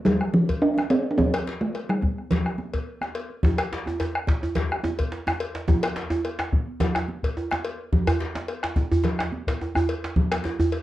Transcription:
0.05 0.35 G3 medium
0.05 bombo rim soft
0.05 cowbell soft
0.05 djembe slap medium
0.05 low conga medium
0.05 djembe bass medium
0.21 bombo rim medium
0.21 djembe tone medium
0.34 0.63 F3 medium
0.34 high conga medium
0.49 bombo low medium
0.49 cowbell soft
0.49 high conga soft
0.62 0.90 D4 medium
0.77 bombo rim medium
0.77 djembe slap medium
0.77 high conga medium
0.90 1.10 C4 medium
0.90 cowbell soft
1.11 1.19 D4 medium
1.18 1.60 C4 medium
1.18 bombo low medium
1.18 high conga medium
1.18 low conga medium
1.18 djembe bass medium
1.34 bombo rim medium
1.34 cowbell medium
1.34 djembe slap soft
1.34 djembe tone medium
1.47 djembe slap medium
1.61 1.74 A3 medium
1.61 bombo rim soft
1.61 djembe slap soft
1.61 high conga medium
1.75 bombo rim soft
1.75 cowbell soft
1.75 high conga soft
1.89 2.33 G3 medium
1.89 bombo rim medium
2.02 bombo rim soft
2.02 bombo low medium
2.02 high conga medium
2.18 bombo rim soft
2.31 3.15 F3 medium
2.31 cowbell soft
2.31 djembe slap medium
2.31 high conga soft
2.31 low conga medium
2.31 djembe bass medium
2.46 bombo rim medium
2.46 high conga soft
2.46 djembe tone medium
2.58 bombo rim soft
2.58 high conga medium
2.74 bombo low medium
2.74 cowbell soft
2.87 high conga soft
3.01 bombo rim medium
3.01 djembe slap medium
3.01 high conga medium
3.15 cowbell soft
3.30 high conga soft
3.43 bombo low loud
3.43 high conga medium
3.43 djembe tone loud
3.43 low conga medium
3.43 djembe bass medium
3.58 bombo rim medium
3.58 cowbell medium
3.58 djembe tone medium
3.71 djembe slap medium
3.71 high conga soft
3.86 bombo rim soft
3.86 djembe slap soft
3.86 high conga medium
3.86 djembe tone medium
4.00 bombo rim soft
4.00 cowbell soft
4.00 djembe tone loud
4.15 bombo rim medium
4.27 bombo low loud
4.27 djembe slap soft
4.27 djembe slap medium
4.27 high conga medium
4.43 djembe tone medium
4.55 bombo rim soft
4.55 cowbell soft
4.55 djembe slap medium
4.55 low conga medium
4.55 djembe bass medium
4.71 bombo rim medium
4.71 djembe tone medium
4.83 high conga medium
4.83 djembe tone loud
4.99 bombo low medium
4.99 cowbell medium
4.99 high conga soft
5.12 djembe slap medium
5.27 bombo rim medium
5.27 djembe slap medium
5.27 high conga medium
5.27 djembe tone loud
5.40 cowbell medium
5.55 djembe slap medium
5.68 bombo low loud
5.68 high conga medium
5.68 djembe tone loud
5.68 low conga medium
5.68 djembe bass medium
5.83 bombo rim medium
5.83 cowbell medium
5.83 djembe tone medium
5.96 djembe slap medium
5.96 high conga soft
6.10 bombo rim soft
6.10 djembe slap soft
6.10 djembe tone loud
6.10 high conga medium
6.25 bombo rim soft
6.25 cowbell soft
6.39 bombo rim medium
6.39 djembe slap medium
6.52 bombo low loud
6.52 djembe slap soft
6.52 high conga medium
6.80 bombo rim soft
6.80 cowbell soft
6.80 djembe slap medium
6.80 djembe tone medium
6.80 low conga medium
6.80 djembe bass medium
6.95 bombo rim medium
6.95 djembe slap medium
6.95 djembe tone medium
7.08 high conga medium
7.23 bombo low medium
7.23 cowbell soft
7.23 high conga soft
7.37 djembe tone medium
7.51 bombo rim medium
7.51 djembe slap medium
7.51 high conga medium
7.64 cowbell medium
7.92 bombo low medium
7.92 high conga medium
7.92 djembe bass medium
7.92 low conga medium
8.07 bombo rim medium
8.07 cowbell medium
8.07 djembe tone medium
8.07 djembe bass loud
8.20 djembe slap medium
8.20 high conga soft
8.35 bombo rim soft
8.35 djembe slap soft
8.35 djembe slap medium
8.35 high conga medium
8.48 bombo rim soft
8.48 cowbell soft
8.63 bombo rim medium
8.63 djembe slap medium
8.76 bombo low loud
8.76 djembe slap soft
8.76 high conga medium
8.76 djembe tone medium
8.92 djembe bass loud
9.04 bombo rim soft
9.04 cowbell soft
9.04 djembe slap medium
9.04 djembe bass medium
9.04 low conga medium
9.19 bombo rim medium
9.19 djembe slap medium
9.19 djembe tone medium
9.32 high conga medium
9.47 bombo low medium
9.47 cowbell soft
9.47 djembe slap medium
9.47 high conga soft
9.62 djembe tone medium
9.75 bombo rim medium
9.75 djembe slap medium
9.75 high conga medium
9.75 djembe bass loud
9.89 cowbell medium
10.04 djembe slap medium
10.16 bombo low loud
10.16 djembe slap soft
10.16 high conga medium
10.16 low conga medium
10.16 djembe bass medium
10.32 bombo rim medium
10.32 cowbell medium
10.32 djembe slap medium
10.32 djembe tone medium
10.44 djembe slap medium
10.44 djembe tone medium
10.59 high conga medium
10.59 djembe bass loud
10.72 cowbell medium
10.72 djembe slap soft
10.72 high conga soft

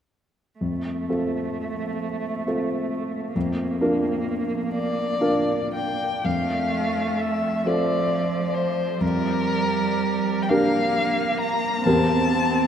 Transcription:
0.60 1.08 F2 soft
0.60 3.31 A3 soft
1.09 2.43 C4 soft
1.09 2.43 F4 soft
1.09 2.43 A4 soft
2.47 3.31 C4 soft
2.47 3.31 F4 soft
2.47 3.32 A4 soft
3.34 3.79 F2 soft
3.34 5.99 A#3 soft
3.81 5.18 D4 soft
3.81 5.18 F4 soft
3.81 5.19 A#4 soft
4.73 5.70 D5 medium
5.21 6.21 D4 soft
5.21 6.21 F4 soft
5.21 6.21 A#4 soft
5.75 6.26 G5 medium
6.23 7.62 F2 soft
6.23 7.67 A3 soft
6.23 7.22 F5 soft
7.20 7.68 E5 soft
7.66 9.01 F3 soft
7.66 8.98 C4 soft
7.66 8.98 F4 soft
7.66 8.98 A4 soft
7.66 8.56 D5 medium
8.54 9.03 C5 medium
9.01 10.45 F2 soft
9.01 10.52 G3 soft
9.01 10.44 A#4 medium
10.42 10.50 G5 soft
10.49 11.84 A#3 soft
10.49 11.81 D4 soft
10.49 11.81 G4 soft
10.49 11.81 A#4 soft
10.49 11.39 F5 medium
11.40 11.85 A#5 medium
11.84 12.67 E2 soft
11.84 12.67 C4 soft
11.84 12.67 G4 soft
11.84 12.67 A#4 soft
11.84 12.67 A5 medium

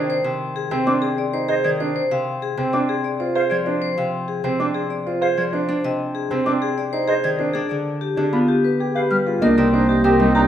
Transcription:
0.00 0.23 C3 medium
0.00 1.63 D#3 medium
0.00 0.85 C4 medium
0.00 0.14 D4 medium
0.10 0.29 C5 medium
0.24 0.70 C3 medium
0.56 0.76 G#4 medium
0.71 1.97 C3 medium
0.71 0.91 C4 medium
0.71 0.91 C5 medium
0.87 2.72 C4 medium
0.87 1.07 D4 medium
0.87 0.93 D6 medium
1.02 1.22 G#4 medium
1.18 1.38 D5 medium
1.33 1.54 D#4 medium
1.33 1.54 C5 medium
1.49 1.69 G#4 medium
1.49 1.69 C5 medium
1.49 1.55 D#5 medium
1.64 1.97 D#3 medium
1.64 1.85 D5 medium
1.64 1.70 G#6 medium
1.80 2.00 D4 medium
1.80 1.95 C5 medium
1.96 2.16 C5 medium
2.11 2.56 C3 medium
2.11 2.31 F5 medium
2.42 2.62 G#4 medium
2.57 3.96 C3 medium
2.57 2.78 C4 medium
2.57 2.78 C5 medium
2.73 4.59 C4 medium
2.73 2.94 D4 medium
2.73 2.79 D6 medium
2.89 3.09 G#4 medium
3.04 3.25 D5 medium
3.20 3.40 F4 medium
3.20 3.40 C5 medium
3.35 3.56 G#4 medium
3.35 3.56 C5 medium
3.35 3.42 F5 medium
3.50 5.36 F3 soft
3.50 3.71 D5 medium
3.50 3.57 G#6 medium
3.66 3.87 D4 medium
3.66 3.80 C5 medium
3.82 4.02 C5 medium
3.98 4.43 C3 medium
3.98 4.18 F5 medium
4.28 4.49 G#4 medium
4.44 5.70 C3 medium
4.44 4.64 C4 medium
4.44 4.65 C5 medium
4.60 6.45 C4 medium
4.60 4.80 D4 medium
4.60 4.66 D6 medium
4.74 4.95 G#4 medium
4.90 5.11 D5 medium
5.06 5.27 F4 soft
5.06 5.27 C5 medium
5.22 5.42 G#4 medium
5.22 5.42 C5 medium
5.22 5.28 F5 medium
5.37 5.70 F3 soft
5.37 5.58 D5 soft
5.37 5.43 G#6 soft
5.53 5.73 D4 medium
5.53 5.68 C5 medium
5.69 7.53 D4 medium
5.69 5.89 C5 medium
5.84 6.30 C3 medium
5.84 6.04 D#5 medium
6.15 6.35 G#4 medium
6.31 7.56 C3 medium
6.31 6.51 C4 medium
6.31 6.51 C5 medium
6.46 7.56 C4 medium
6.46 6.67 D4 medium
6.46 6.52 D6 medium
6.62 6.82 G#4 medium
6.78 6.98 D5 medium
6.93 7.13 D#4 medium
6.93 7.13 C5 medium
7.08 7.28 G#4 medium
7.08 7.29 C5 medium
7.08 7.14 D#5 medium
7.24 7.56 D#3 medium
7.24 7.44 D5 medium
7.24 7.30 G#6 medium
7.39 7.60 D4 medium
7.39 7.60 C5 medium
7.54 10.47 D4 medium
7.54 7.75 G#4 medium
7.69 8.16 D3 soft
7.69 7.90 D5 soft
8.01 8.22 G4 medium
8.16 9.43 D3 medium
8.16 8.37 D4 soft
8.16 8.37 G#4 soft
8.33 9.43 B3 medium
8.33 8.53 F4 medium
8.33 8.39 B5 soft
8.48 8.69 G4 medium
8.64 8.84 B4 soft
8.80 9.00 G4 soft
8.80 9.00 G#4 soft
8.95 9.15 G4 medium
8.95 9.15 B4 medium
8.95 9.01 F5 medium
9.10 10.18 G3 soft
9.10 9.31 B4 soft
9.10 9.17 F6 soft
9.26 9.46 F4 soft
9.26 9.47 G#4 soft
9.41 10.47 C2 medium
9.41 10.47 A#3 medium
9.41 9.62 D4 medium
9.41 9.53 D#4 soft
9.41 9.62 A#4 medium
9.41 9.47 D#5 medium
9.58 10.03 C3 medium
9.58 9.68 D#4 soft
9.58 9.78 D5 medium
9.73 9.93 D4 medium
9.73 9.84 D#4 soft
9.73 9.93 C5 medium
9.89 9.99 D#4 soft
9.89 10.09 G4 medium
10.04 10.47 C3 medium
10.04 10.15 D#4 soft
10.04 10.24 G4 medium
10.04 10.24 A#4 medium
10.19 10.47 G3 medium
10.19 10.40 C4 medium
10.19 10.30 D#4 medium
10.19 10.40 D#5 medium
10.35 10.47 D4 medium
10.35 10.46 D#4 medium
10.35 10.47 G4 medium
10.35 10.41 A#5 medium

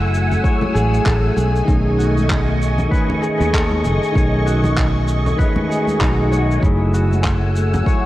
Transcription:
0.00 0.38 F#1 medium
0.00 0.40 F#3 medium
0.00 0.41 A3 medium
0.00 6.58 A3 medium
0.00 0.42 E4 medium
0.00 1.73 E4 medium
0.00 1.95 F#4 medium
0.00 0.74 G#4 medium
0.00 1.33 F#5 medium
0.00 1.38 G#5 medium
0.00 6.59 G#5 medium
0.00 1.33 E6 medium
0.14 shaker medium
0.31 low conga medium
0.31 shaker medium
0.42 1.34 F#3 medium
0.42 1.35 A3 medium
0.42 2.35 C#5 loud
0.42 kick loud
0.42 shaker soft
0.46 1.36 E4 medium
0.46 1.37 G#4 medium
0.61 high conga medium
0.61 low conga medium
0.74 0.99 A1 medium
0.74 1.11 G#4 loud
0.74 shaker medium
0.94 shaker medium
1.05 1.30 A1 medium
1.05 1.42 A4 loud
1.05 kick loud
1.05 clap medium
1.05 shaker medium
1.36 1.61 B1 medium
1.36 3.21 G#4 medium
1.36 6.58 D#5 medium
1.36 6.58 C#6 medium
1.36 high conga medium
1.36 shaker medium
1.56 shaker medium
1.65 2.86 B1 medium
1.65 2.87 D#3 medium
1.65 2.88 A3 medium
1.65 4.15 D#4 medium
1.65 kick loud
1.65 shaker soft
1.69 2.89 C#4 medium
1.69 2.90 G#4 medium
1.98 4.42 F#4 medium
1.98 shaker medium
2.17 high conga medium
2.17 shaker medium
2.30 kick loud
2.30 clap loud
2.30 shaker soft
2.62 shaker medium
2.78 low conga medium
2.78 shaker medium
2.88 4.11 D#3 medium
2.88 4.11 A3 medium
2.88 4.12 C#4 medium
2.88 4.96 B4 loud
2.88 kick loud
2.93 4.14 G#5 medium
2.93 shaker soft
3.10 low conga medium
3.22 3.59 G#4 loud
3.22 shaker medium
3.40 3.86 D#2 medium
3.40 shaker medium
3.53 3.90 A4 loud
3.53 kick loud
3.53 clap loud
3.53 shaker medium
3.71 high conga medium
3.84 3.97 F#1 medium
3.84 5.69 G#4 medium
3.84 shaker medium
4.03 shaker medium
4.12 5.33 B1 medium
4.12 5.34 D#3 medium
4.12 5.35 A3 medium
4.12 6.00 D#4 medium
4.12 kick medium
4.16 5.36 C#4 medium
4.16 5.37 G#5 loud
4.16 shaker soft
4.46 6.90 F#4 medium
4.46 shaker medium
4.64 high conga medium
4.64 low conga medium
4.64 shaker medium
4.77 kick loud
4.77 clap loud
4.77 shaker medium
5.08 shaker medium
5.26 low conga medium
5.26 shaker medium
5.36 6.58 D#3 medium
5.36 6.59 A3 medium
5.36 7.43 B4 loud
5.36 kick loud
5.36 swell medium
5.36 shaker soft
5.41 6.61 C#4 medium
5.41 6.61 G#4 medium
5.56 high conga medium
5.56 low conga medium
5.69 7.96 G#4 medium
5.69 shaker medium
5.87 high conga medium
5.87 shaker medium
6.00 6.57 B1 medium
6.00 6.68 D#4 loud
6.00 kick loud
6.00 clap loud
6.00 shaker medium
6.31 7.86 C#5 medium
6.31 high conga medium
6.31 shaker medium
6.51 shaker medium
6.59 7.81 F#1 loud
6.59 7.81 F#3 medium
6.59 7.83 A3 medium
6.59 8.06 A3 medium
6.59 8.06 E4 medium
6.59 8.06 F#5 medium
6.59 8.06 G#5 medium
6.59 8.06 E6 medium
6.59 kick loud
6.64 7.84 E4 medium
6.64 7.85 G#4 medium
6.64 shaker soft
6.93 8.06 F#4 medium
6.93 shaker loud
7.11 high conga medium
7.11 shaker medium
7.24 kick loud
7.24 clap loud
7.24 shaker medium
7.56 shaker medium
7.74 low conga medium
7.74 shaker medium
7.82 8.06 F#3 medium
7.82 8.06 A3 medium
7.82 8.06 C#5 loud
7.82 kick loud
7.87 8.06 E4 medium
7.87 8.06 G#5 medium
7.87 shaker soft

